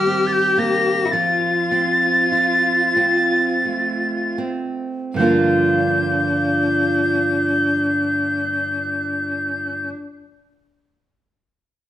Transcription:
0.00 1.13 D#3 medium
0.00 1.12 G3 soft
0.00 0.56 A#3 soft
0.00 1.07 G4 medium
0.00 1.12 G4 medium
0.00 0.28 F6 medium
0.06 1.71 C4 soft
0.27 0.34 A6 medium
0.32 0.60 G6 medium
0.58 1.24 A#3 soft
0.58 1.13 A#6 medium
1.05 1.15 E4 soft
1.12 5.17 F3 soft
1.12 4.39 F4 medium
1.12 2.32 F4 soft
1.12 4.38 A6 medium
1.71 2.95 C4 soft
2.32 5.23 F4 soft
2.96 4.37 C4 soft
3.65 5.21 A3 soft
4.38 5.19 C4 soft
5.14 9.91 G2 soft
5.14 9.93 D3 soft
5.14 9.90 D4 soft
5.14 9.89 G6 medium
5.18 9.95 F3 soft
5.18 9.96 A#3 soft
5.18 9.98 D4 soft
5.23 10.00 F4 medium

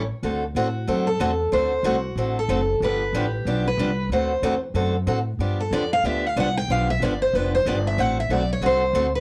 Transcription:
0.23 0.54 D2 medium
0.23 0.43 D3 medium
0.23 0.43 A3 medium
0.23 0.43 C4 medium
0.23 0.43 F#4 medium
0.23 0.43 A4 medium
0.55 0.86 A2 medium
0.55 0.66 D3 medium
0.55 0.66 A3 medium
0.55 0.67 C4 medium
0.55 0.66 F#4 medium
0.55 1.03 F#4 medium
0.55 0.67 A4 medium
0.87 1.19 F#2 medium
0.87 1.07 D3 medium
0.87 1.07 A3 medium
0.87 1.08 C4 medium
0.87 1.08 F#4 medium
0.87 1.08 A4 medium
1.07 1.49 A4 medium
1.20 1.51 E2 medium
1.20 1.30 D3 medium
1.20 1.31 A3 medium
1.20 1.31 C4 medium
1.20 1.31 F#4 medium
1.20 1.31 A4 medium
1.52 1.82 D2 medium
1.52 1.72 D3 medium
1.52 1.72 A3 medium
1.52 1.72 C4 medium
1.52 1.72 F#4 medium
1.52 1.72 A4 medium
1.52 2.00 C5 medium
1.83 2.15 C2 medium
1.83 1.95 D3 medium
1.83 1.95 A3 medium
1.83 1.95 C4 medium
1.83 1.95 F#4 medium
1.83 2.33 F#4 medium
1.83 1.95 A4 loud
2.16 2.48 A1 medium
2.16 2.37 D3 medium
2.16 2.37 A3 medium
2.16 2.37 C4 medium
2.16 2.37 F#4 medium
2.16 2.37 A4 medium
2.39 2.80 A4 medium
2.49 2.80 F#1 medium
2.49 2.60 D3 medium
2.49 2.60 A3 medium
2.49 2.60 C4 medium
2.49 2.60 F#4 medium
2.49 2.60 A4 medium
2.80 3.12 G1 medium
2.80 3.01 D3 medium
2.80 3.02 F3 medium
2.80 3.02 B3 medium
2.80 3.02 D4 medium
2.80 3.02 G4 medium
2.80 3.31 B4 medium
3.13 3.44 A1 medium
3.13 3.25 D3 medium
3.13 3.25 F3 medium
3.13 3.25 B3 medium
3.13 3.25 D4 medium
3.13 3.25 G4 medium
3.13 3.62 G4 medium
3.45 3.77 B1 medium
3.45 3.66 D3 medium
3.45 3.66 F3 medium
3.45 3.66 B3 medium
3.45 3.66 D4 medium
3.45 3.66 G4 medium
3.67 4.09 B4 medium
3.77 4.09 C2 medium
3.77 3.89 D3 medium
3.77 3.90 F3 medium
3.77 3.89 B3 medium
3.77 3.89 D4 medium
3.77 3.90 G4 medium
4.09 4.41 D2 medium
4.09 4.31 D3 medium
4.09 4.31 A3 medium
4.09 4.31 C4 medium
4.09 4.31 F#4 medium
4.09 4.31 A4 medium
4.09 4.60 C5 medium
4.42 4.74 E2 medium
4.42 4.54 D3 medium
4.42 4.54 A3 medium
4.42 4.54 C4 medium
4.42 4.54 F#4 loud
4.42 4.54 A4 medium
4.74 5.06 F#2 medium
4.74 4.95 D3 medium
4.74 4.95 A3 medium
4.74 4.95 C4 medium
4.74 4.95 F#4 medium
4.74 4.95 A4 medium
5.07 5.38 A2 medium
5.07 5.18 D3 medium
5.07 5.18 A3 medium
5.07 5.18 C4 medium
5.07 5.18 F#4 medium
5.07 5.19 A4 medium
5.39 5.70 G2 medium
5.39 5.60 D3 soft
5.39 5.60 F3 medium
5.39 5.60 B3 medium
5.39 5.60 D4 medium
5.39 5.60 G4 medium
5.60 5.73 A4 medium
5.71 6.03 F2 medium
5.71 5.83 D3 medium
5.71 5.83 F3 medium
5.71 5.83 B3 medium
5.71 5.83 D4 medium
5.71 5.83 G4 medium
5.71 5.91 D5 medium
5.93 6.05 F5 loud
6.03 6.35 D2 medium
6.03 6.24 D3 medium
6.03 6.24 F3 medium
6.03 6.24 B3 medium
6.03 6.25 D4 medium
6.03 6.25 G4 medium
6.03 6.26 E5 medium
6.26 6.38 F5 medium
6.36 6.68 C2 medium
6.36 6.47 D3 medium
6.36 6.47 F3 medium
6.36 6.48 B3 medium
6.36 6.48 D4 medium
6.36 6.48 G4 medium
6.36 6.57 F#5 medium
6.57 6.71 G5 loud
6.68 6.99 B1 medium
6.68 6.89 D3 medium
6.68 6.89 F3 medium
6.68 6.89 B3 medium
6.68 6.89 D4 medium
6.68 6.89 G4 medium
6.68 6.89 F5 medium
6.90 7.02 E5 medium
7.00 7.32 G1 medium
7.00 7.12 D3 medium
7.00 7.13 F3 medium
7.00 7.13 B3 loud
7.00 7.13 D4 medium
7.00 7.13 G4 medium
7.04 7.21 D5 medium
7.22 7.35 C5 medium
7.33 7.65 F1 medium
7.33 7.54 D3 medium
7.33 7.54 F3 medium
7.33 7.54 B3 medium
7.33 7.55 D4 medium
7.33 7.55 G4 medium
7.33 7.53 B4 medium
7.55 7.67 C5 medium
7.66 7.97 G1 medium
7.66 7.77 D3 medium
7.66 7.77 F3 medium
7.66 7.77 B3 medium
7.66 7.77 D4 medium
7.66 7.77 G4 medium
7.66 7.86 D5 medium
7.87 8.00 E5 medium
7.98 8.29 A1 medium
7.98 8.18 D3 medium
7.98 8.18 A3 medium
7.98 8.18 C4 medium
7.98 8.18 F#4 medium
7.98 8.18 A4 medium
7.98 8.18 F#5 medium
8.20 8.32 E5 medium
8.29 8.61 B1 medium
8.29 8.41 D3 medium
8.29 8.41 A3 medium
8.29 8.41 C4 medium
8.29 8.42 F#4 medium
8.29 8.42 A4 medium
8.29 8.50 D5 medium
8.53 8.64 C#5 medium
8.61 8.93 C2 medium
8.61 8.82 D3 medium
8.61 8.82 A3 medium
8.61 8.83 C4 medium
8.61 8.82 F#4 medium
8.61 8.83 A4 medium
8.66 9.12 C5 medium
8.93 9.20 D2 medium
8.93 9.06 D3 medium
8.93 9.06 A3 medium
8.93 9.06 C4 medium
8.93 9.06 F#4 loud
8.93 9.06 A4 medium
9.15 9.20 B4 medium

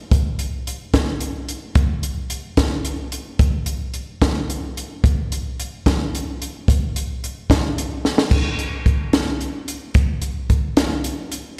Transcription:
0.12 kick loud
0.12 closed hi-hat medium
0.39 closed hi-hat medium
0.67 closed hi-hat medium
0.94 kick medium
0.94 snare loud
0.94 closed hi-hat medium
1.21 closed hi-hat medium
1.49 closed hi-hat medium
1.75 kick loud
1.75 closed hi-hat medium
2.03 closed hi-hat medium
2.30 closed hi-hat medium
2.57 kick medium
2.57 snare loud
2.57 closed hi-hat medium
2.85 closed hi-hat medium
3.12 closed hi-hat medium
3.39 kick loud
3.39 closed hi-hat medium
3.66 closed hi-hat medium
3.94 closed hi-hat soft
4.22 kick medium
4.22 snare loud
4.22 closed hi-hat medium
4.50 closed hi-hat medium
4.77 closed hi-hat medium
5.04 kick loud
5.04 closed hi-hat medium
5.32 closed hi-hat medium
5.60 closed hi-hat medium
5.86 kick medium
5.86 snare medium
5.86 closed hi-hat medium
6.15 closed hi-hat medium
6.42 closed hi-hat medium
6.68 kick loud
6.68 closed hi-hat medium
6.96 closed hi-hat medium
7.24 closed hi-hat medium
7.50 kick medium
7.50 snare loud
7.50 closed hi-hat medium
7.78 closed hi-hat medium
8.05 snare medium
8.18 snare medium
8.31 kick loud
8.31 crash medium
8.59 closed hi-hat medium
8.86 kick medium
8.86 closed hi-hat soft
9.13 snare loud
9.13 closed hi-hat medium
9.41 closed hi-hat soft
9.68 closed hi-hat medium
9.94 kick loud
9.94 closed hi-hat medium
10.22 closed hi-hat medium
10.50 kick medium
10.50 closed hi-hat medium
10.77 snare loud
10.77 closed hi-hat medium
11.04 closed hi-hat medium
11.32 closed hi-hat medium

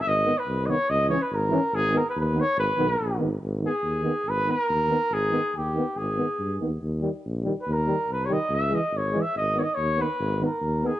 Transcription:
0.00 0.09 E5 loud
0.06 0.29 G#1 loud
0.06 0.40 D#5 loud
0.25 0.34 D#3 medium
0.25 0.34 B3 medium
0.38 0.67 B4 medium
0.47 0.70 C2 medium
0.66 0.76 D#3 medium
0.66 0.76 B3 medium
0.66 0.91 C#5 loud
0.66 0.71 D#5 medium
0.90 1.13 C#2 loud
0.90 1.09 D#5 loud
1.08 1.17 E3 medium
1.08 1.20 C#4 medium
1.08 1.23 C#5 medium
1.22 1.36 B4 medium
1.32 1.54 G#1 medium
1.32 1.77 A#4 medium
1.49 1.58 E3 medium
1.49 1.61 C#4 medium
1.73 1.96 G#1 loud
1.73 1.99 G#4 loud
1.92 2.01 D#3 medium
1.92 2.01 B3 medium
1.98 2.07 A#4 medium
2.09 2.16 B4 medium
2.16 2.39 D#2 loud
2.21 2.42 B4 medium
2.34 2.44 D#3 medium
2.34 2.43 B3 medium
2.40 2.59 C#5 loud
2.57 2.69 G#1 loud
2.57 3.17 B4 medium
2.77 2.97 B1 medium
2.77 2.86 D#3 medium
2.77 2.86 B3 medium
3.00 3.18 A#1 medium
3.19 3.39 G#1 medium
3.19 3.27 D#3 medium
3.19 3.27 B3 medium
3.42 3.65 G#1 medium
3.61 3.70 D#3 medium
3.61 3.72 B3 medium
3.66 4.31 G#4 medium
3.83 4.06 D#2 medium
4.03 4.12 D#3 medium
4.03 4.13 B3 medium
4.25 4.49 G#1 medium
4.25 4.52 B4 medium
4.46 4.54 D#3 medium
4.46 4.55 B3 medium
4.51 5.15 A#4 loud
4.69 4.92 D#2 medium
4.88 4.97 D#3 medium
4.88 4.98 B3 medium
5.10 5.34 G#1 medium
5.10 5.54 G#4 medium
5.31 5.40 D#3 medium
5.31 5.39 B3 medium
5.55 5.78 D#2 medium
5.55 5.98 G4 medium
5.75 5.83 D#3 medium
5.75 5.85 B3 medium
5.97 6.20 G#1 medium
5.97 6.60 G#4 medium
6.17 6.26 D#3 medium
6.17 6.25 B3 medium
6.39 6.58 G2 medium
6.60 6.79 D#2 medium
6.60 6.69 D#3 medium
6.60 6.69 B3 soft
6.82 7.05 D#2 medium
7.01 7.10 D#3 medium
7.01 7.10 G3 medium
7.25 7.48 A#1 medium
7.44 7.53 D#3 medium
7.44 7.53 G3 medium
7.61 7.74 B4 medium
7.67 7.90 D#2 medium
7.73 8.12 A#4 medium
7.87 7.96 D#3 medium
7.87 7.95 G3 medium
8.08 8.31 C2 medium
8.13 8.27 B4 medium
8.25 8.37 G3 medium
8.25 8.34 C#5 medium
8.30 8.38 D#3 medium
8.30 8.56 D#5 medium
8.49 8.73 C#2 medium
8.55 8.76 E5 medium
8.69 8.81 E3 medium
8.69 8.78 G#3 medium
8.75 8.99 D#5 medium
8.92 9.16 G#1 medium
8.97 9.22 C#5 medium
9.12 9.23 E3 medium
9.12 9.21 G#3 medium
9.21 9.37 E5 medium
9.36 9.59 G#1 medium
9.36 9.60 D#5 medium
9.54 9.66 D#3 medium
9.54 9.63 B3 medium
9.59 9.64 C#5 medium
9.59 9.76 D#5 medium
9.74 10.01 D#2 medium
9.74 10.03 C#5 medium
9.96 10.08 D#3 medium
9.96 10.05 B3 medium
10.01 10.42 B4 medium
10.20 10.44 G#1 loud
10.40 10.49 D#3 medium
10.40 10.49 B3 medium
10.46 10.88 A#4 medium
10.62 10.85 D#2 medium
10.83 10.92 D#3 medium
10.83 10.92 B3 medium
10.83 11.00 G#4 medium

